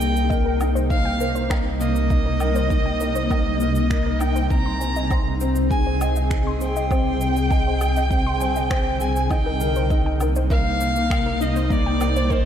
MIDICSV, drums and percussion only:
0, 0, Header, 1, 2, 480
1, 0, Start_track
1, 0, Key_signature, -3, "minor"
1, 0, Tempo, 600000
1, 1687, Time_signature, 4, 2, 24, 8
1, 9962, End_track
2, 0, Start_track
2, 0, Title_t, "Drums"
2, 10, Note_on_c, 9, 82, 76
2, 90, Note_off_c, 9, 82, 0
2, 132, Note_on_c, 9, 82, 42
2, 212, Note_off_c, 9, 82, 0
2, 243, Note_on_c, 9, 36, 110
2, 253, Note_on_c, 9, 82, 33
2, 323, Note_off_c, 9, 36, 0
2, 333, Note_off_c, 9, 82, 0
2, 485, Note_on_c, 9, 77, 71
2, 485, Note_on_c, 9, 82, 75
2, 565, Note_off_c, 9, 77, 0
2, 565, Note_off_c, 9, 82, 0
2, 609, Note_on_c, 9, 82, 42
2, 689, Note_off_c, 9, 82, 0
2, 723, Note_on_c, 9, 36, 112
2, 729, Note_on_c, 9, 82, 30
2, 803, Note_off_c, 9, 36, 0
2, 809, Note_off_c, 9, 82, 0
2, 964, Note_on_c, 9, 82, 78
2, 1044, Note_off_c, 9, 82, 0
2, 1086, Note_on_c, 9, 82, 42
2, 1166, Note_off_c, 9, 82, 0
2, 1203, Note_on_c, 9, 36, 100
2, 1207, Note_on_c, 9, 26, 81
2, 1207, Note_on_c, 9, 77, 69
2, 1207, Note_on_c, 9, 82, 31
2, 1283, Note_off_c, 9, 36, 0
2, 1287, Note_off_c, 9, 26, 0
2, 1287, Note_off_c, 9, 77, 0
2, 1287, Note_off_c, 9, 82, 0
2, 1446, Note_on_c, 9, 82, 71
2, 1526, Note_off_c, 9, 82, 0
2, 1566, Note_on_c, 9, 82, 41
2, 1646, Note_off_c, 9, 82, 0
2, 1682, Note_on_c, 9, 36, 117
2, 1685, Note_on_c, 9, 82, 33
2, 1762, Note_off_c, 9, 36, 0
2, 1765, Note_off_c, 9, 82, 0
2, 1923, Note_on_c, 9, 77, 69
2, 1923, Note_on_c, 9, 82, 77
2, 2003, Note_off_c, 9, 77, 0
2, 2003, Note_off_c, 9, 82, 0
2, 2044, Note_on_c, 9, 82, 45
2, 2124, Note_off_c, 9, 82, 0
2, 2163, Note_on_c, 9, 36, 113
2, 2167, Note_on_c, 9, 82, 34
2, 2243, Note_off_c, 9, 36, 0
2, 2247, Note_off_c, 9, 82, 0
2, 2404, Note_on_c, 9, 82, 79
2, 2484, Note_off_c, 9, 82, 0
2, 2525, Note_on_c, 9, 82, 48
2, 2605, Note_off_c, 9, 82, 0
2, 2644, Note_on_c, 9, 36, 119
2, 2649, Note_on_c, 9, 77, 68
2, 2649, Note_on_c, 9, 82, 34
2, 2724, Note_off_c, 9, 36, 0
2, 2729, Note_off_c, 9, 77, 0
2, 2729, Note_off_c, 9, 82, 0
2, 2884, Note_on_c, 9, 82, 78
2, 2964, Note_off_c, 9, 82, 0
2, 3004, Note_on_c, 9, 82, 43
2, 3084, Note_off_c, 9, 82, 0
2, 3124, Note_on_c, 9, 36, 110
2, 3126, Note_on_c, 9, 26, 72
2, 3126, Note_on_c, 9, 82, 32
2, 3204, Note_off_c, 9, 36, 0
2, 3206, Note_off_c, 9, 26, 0
2, 3206, Note_off_c, 9, 82, 0
2, 3367, Note_on_c, 9, 77, 62
2, 3367, Note_on_c, 9, 82, 77
2, 3447, Note_off_c, 9, 77, 0
2, 3447, Note_off_c, 9, 82, 0
2, 3488, Note_on_c, 9, 82, 43
2, 3568, Note_off_c, 9, 82, 0
2, 3604, Note_on_c, 9, 36, 112
2, 3608, Note_on_c, 9, 82, 33
2, 3684, Note_off_c, 9, 36, 0
2, 3688, Note_off_c, 9, 82, 0
2, 3849, Note_on_c, 9, 82, 74
2, 3929, Note_off_c, 9, 82, 0
2, 3968, Note_on_c, 9, 82, 46
2, 4048, Note_off_c, 9, 82, 0
2, 4085, Note_on_c, 9, 36, 112
2, 4088, Note_on_c, 9, 77, 66
2, 4088, Note_on_c, 9, 82, 35
2, 4165, Note_off_c, 9, 36, 0
2, 4168, Note_off_c, 9, 77, 0
2, 4168, Note_off_c, 9, 82, 0
2, 4324, Note_on_c, 9, 82, 76
2, 4404, Note_off_c, 9, 82, 0
2, 4445, Note_on_c, 9, 82, 47
2, 4525, Note_off_c, 9, 82, 0
2, 4565, Note_on_c, 9, 36, 117
2, 4570, Note_on_c, 9, 82, 34
2, 4645, Note_off_c, 9, 36, 0
2, 4650, Note_off_c, 9, 82, 0
2, 4810, Note_on_c, 9, 77, 70
2, 4810, Note_on_c, 9, 82, 83
2, 4890, Note_off_c, 9, 77, 0
2, 4890, Note_off_c, 9, 82, 0
2, 4927, Note_on_c, 9, 82, 45
2, 5007, Note_off_c, 9, 82, 0
2, 5045, Note_on_c, 9, 36, 113
2, 5048, Note_on_c, 9, 26, 75
2, 5048, Note_on_c, 9, 82, 34
2, 5125, Note_off_c, 9, 36, 0
2, 5128, Note_off_c, 9, 26, 0
2, 5128, Note_off_c, 9, 82, 0
2, 5288, Note_on_c, 9, 82, 74
2, 5368, Note_off_c, 9, 82, 0
2, 5411, Note_on_c, 9, 82, 47
2, 5491, Note_off_c, 9, 82, 0
2, 5525, Note_on_c, 9, 36, 116
2, 5530, Note_on_c, 9, 77, 60
2, 5530, Note_on_c, 9, 82, 33
2, 5605, Note_off_c, 9, 36, 0
2, 5610, Note_off_c, 9, 77, 0
2, 5610, Note_off_c, 9, 82, 0
2, 5768, Note_on_c, 9, 82, 74
2, 5848, Note_off_c, 9, 82, 0
2, 5892, Note_on_c, 9, 82, 46
2, 5972, Note_off_c, 9, 82, 0
2, 6005, Note_on_c, 9, 36, 118
2, 6013, Note_on_c, 9, 82, 33
2, 6085, Note_off_c, 9, 36, 0
2, 6093, Note_off_c, 9, 82, 0
2, 6249, Note_on_c, 9, 77, 62
2, 6249, Note_on_c, 9, 82, 79
2, 6329, Note_off_c, 9, 77, 0
2, 6329, Note_off_c, 9, 82, 0
2, 6371, Note_on_c, 9, 82, 47
2, 6451, Note_off_c, 9, 82, 0
2, 6485, Note_on_c, 9, 36, 113
2, 6491, Note_on_c, 9, 82, 33
2, 6565, Note_off_c, 9, 36, 0
2, 6571, Note_off_c, 9, 82, 0
2, 6727, Note_on_c, 9, 82, 76
2, 6807, Note_off_c, 9, 82, 0
2, 6846, Note_on_c, 9, 82, 45
2, 6926, Note_off_c, 9, 82, 0
2, 6965, Note_on_c, 9, 36, 116
2, 6967, Note_on_c, 9, 26, 71
2, 6967, Note_on_c, 9, 77, 65
2, 6967, Note_on_c, 9, 82, 33
2, 7045, Note_off_c, 9, 36, 0
2, 7047, Note_off_c, 9, 26, 0
2, 7047, Note_off_c, 9, 77, 0
2, 7047, Note_off_c, 9, 82, 0
2, 7204, Note_on_c, 9, 82, 78
2, 7284, Note_off_c, 9, 82, 0
2, 7329, Note_on_c, 9, 82, 46
2, 7409, Note_off_c, 9, 82, 0
2, 7443, Note_on_c, 9, 36, 108
2, 7446, Note_on_c, 9, 77, 60
2, 7446, Note_on_c, 9, 82, 31
2, 7523, Note_off_c, 9, 36, 0
2, 7526, Note_off_c, 9, 77, 0
2, 7526, Note_off_c, 9, 82, 0
2, 7684, Note_on_c, 9, 82, 76
2, 7764, Note_off_c, 9, 82, 0
2, 7805, Note_on_c, 9, 82, 43
2, 7885, Note_off_c, 9, 82, 0
2, 7923, Note_on_c, 9, 36, 108
2, 7926, Note_on_c, 9, 82, 31
2, 8003, Note_off_c, 9, 36, 0
2, 8006, Note_off_c, 9, 82, 0
2, 8164, Note_on_c, 9, 77, 67
2, 8164, Note_on_c, 9, 82, 78
2, 8244, Note_off_c, 9, 77, 0
2, 8244, Note_off_c, 9, 82, 0
2, 8286, Note_on_c, 9, 82, 44
2, 8366, Note_off_c, 9, 82, 0
2, 8402, Note_on_c, 9, 36, 112
2, 8406, Note_on_c, 9, 82, 34
2, 8482, Note_off_c, 9, 36, 0
2, 8486, Note_off_c, 9, 82, 0
2, 8644, Note_on_c, 9, 82, 81
2, 8724, Note_off_c, 9, 82, 0
2, 8767, Note_on_c, 9, 82, 41
2, 8847, Note_off_c, 9, 82, 0
2, 8882, Note_on_c, 9, 36, 111
2, 8890, Note_on_c, 9, 26, 71
2, 8890, Note_on_c, 9, 77, 61
2, 8890, Note_on_c, 9, 82, 30
2, 8962, Note_off_c, 9, 36, 0
2, 8970, Note_off_c, 9, 26, 0
2, 8970, Note_off_c, 9, 77, 0
2, 8970, Note_off_c, 9, 82, 0
2, 9131, Note_on_c, 9, 82, 79
2, 9211, Note_off_c, 9, 82, 0
2, 9248, Note_on_c, 9, 82, 43
2, 9328, Note_off_c, 9, 82, 0
2, 9363, Note_on_c, 9, 36, 113
2, 9369, Note_on_c, 9, 82, 30
2, 9443, Note_off_c, 9, 36, 0
2, 9449, Note_off_c, 9, 82, 0
2, 9607, Note_on_c, 9, 77, 66
2, 9607, Note_on_c, 9, 82, 73
2, 9687, Note_off_c, 9, 77, 0
2, 9687, Note_off_c, 9, 82, 0
2, 9729, Note_on_c, 9, 82, 39
2, 9809, Note_off_c, 9, 82, 0
2, 9843, Note_on_c, 9, 36, 105
2, 9850, Note_on_c, 9, 82, 30
2, 9923, Note_off_c, 9, 36, 0
2, 9930, Note_off_c, 9, 82, 0
2, 9962, End_track
0, 0, End_of_file